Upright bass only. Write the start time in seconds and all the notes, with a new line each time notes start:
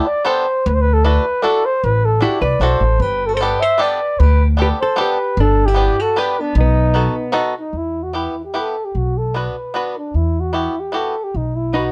0.66 D2
1.84 A1
2.41 C2
2.60 B1
2.80 A1
3.00 G1
4.20 D2
5.37 G1
6.55 B1
7.73 E2
8.95 B1
10.14 E2
11.34 B1